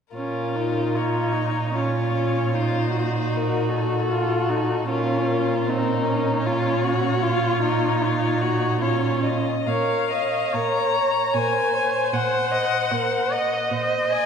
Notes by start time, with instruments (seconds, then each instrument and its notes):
0.14 cello A#2, viola C#4, violin F4 A#4
0.55 viola D#4
0.94 violin D#4 C#5, viola F4
1.33 viola D#4
1.74 viola C#4, violin F4 C#5
2.13 viola C#4
2.54 viola D#4, violin F4 C5
2.96 violin F#4
3.36 violin A#4
3.73 violin A4
4.11 viola F4
4.50 viola D#4
4.89 cello A#2, viola C#4, violin F4 A#4
5.30 violin A#4
5.68 viola C4, violin D#4
6.07 viola C#4
6.46 violin F4 C#5
6.84 violin F#4
7.23 violin F4, viola F4
7.62 violin D#4
8.01 viola D#4, violin F4
8.41 violin F#4
8.81 viola C#4, violin F4 C#5
9.25 violin D#5
9.67 cello A#2, violin A#4 F5, viola C#5
10.10 violin C#5, viola D#5
10.53 cello A#2, violin A#4 A#5, viola C#5
10.96 violin C#5
11.34 cello A#2, violin A#4 G#5, viola C5
11.74 violin C#5
12.13 cello A#2, violin C5 F#5
12.52 violin D#5
12.91 cello A#2, viola A#4, violin C5
13.32 violin D#5, viola D#5
13.71 cello A#2, violin C5
14.11 violin D#5 G#5